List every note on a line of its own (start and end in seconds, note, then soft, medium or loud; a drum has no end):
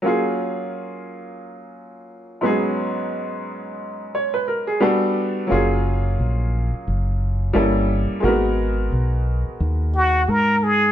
0.02 2.38 F#3 medium
0.02 2.39 A#3 medium
0.02 2.40 C#4 medium
0.02 2.40 F4 medium
0.07 2.41 G#4 medium
2.41 4.77 G#2 medium
2.41 4.77 F#3 medium
2.41 4.78 B3 medium
2.41 4.78 C#4 medium
2.41 4.79 D#4 medium
2.46 4.12 G#4 medium
4.15 4.33 C#5 medium
4.34 4.48 B4 medium
4.48 4.67 A#4 medium
4.67 5.00 G#4 medium
4.80 5.50 G3 medium
4.80 5.50 B3 medium
4.80 5.50 D4 medium
4.80 5.50 F#4 medium
4.80 5.51 A4 medium
5.47 7.49 F#3 medium
5.47 7.50 A#3 medium
5.47 7.51 C#4 medium
5.47 7.51 F4 medium
5.51 6.16 F#1 medium
5.51 7.52 G#4 medium
6.19 6.70 A#1 medium
6.73 muted fingered electric bass stroke soft
6.87 7.52 F#1 medium
7.53 8.06 G1 medium
7.53 8.22 G3 medium
7.53 8.20 A#3 medium
7.53 8.23 C#4 medium
7.53 8.23 E4 medium
7.53 8.24 A4 medium
8.10 muted fingered electric bass stroke soft
8.20 8.88 G#1 medium
8.20 10.90 G#3 medium
8.20 8.30 A#3 soft
8.20 10.92 D#4 medium
8.20 10.92 F#4 medium
8.25 10.92 B3 medium
8.25 10.92 A#4 medium
8.92 9.43 B1 medium
9.45 muted fingered electric bass stroke soft
9.60 10.25 D#2 medium
9.95 10.31 F#4 medium
10.28 10.92 G#2 medium
10.28 10.65 A#4 medium
10.63 10.92 G#4 medium